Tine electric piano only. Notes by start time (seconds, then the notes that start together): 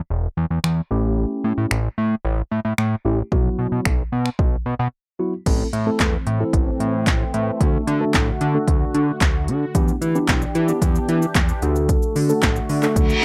0.91 A3 C#4 E4 G4
3.05 A3 C#4 E4 G4
3.32 F#3 B3 E4 F#4
5.19 F#3 B3 E4 F#4
5.46 A3 C4 E4 A4
5.86 A3 C4 E4 A4
6.40 A3 C4 E4 A4
7.60 A3 D4 F#4 A4
8.01 A3 D4 F#4 A4
8.54 A3 D4 F#4 A4
9.75 B3 D4 E4 G4
10.15 B3 D4 E4 G4
10.69 B3 D4 E4 G4
11.62 A3 D4 F#4 A4
12.29 A3 D4 F#4 A4
12.83 A3 D4 F#4 A4